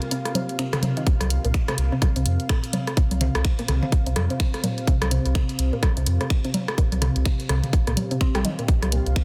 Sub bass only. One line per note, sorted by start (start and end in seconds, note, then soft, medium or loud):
1.21 1.38 C2 loud
1.45 1.53 C2 medium
1.78 1.90 C2 medium
2.16 2.24 C2 medium
2.26 2.37 F2 loud
3.11 3.29 C2 loud
3.35 3.43 C2 medium
3.68 3.80 C2 medium
4.06 4.14 C2 medium
4.16 4.28 F2 loud
5.02 5.19 C2 loud
5.26 5.34 C2 medium
5.59 5.71 C2 medium
5.97 6.05 C2 loud
6.07 6.18 F2 loud
6.92 7.10 C2 loud
7.16 7.24 C2 medium
7.49 7.61 C2 medium
7.87 7.95 C2 loud
8.35 8.43 A#1 medium
8.83 9.00 C2 loud
9.06 9.15 C2 medium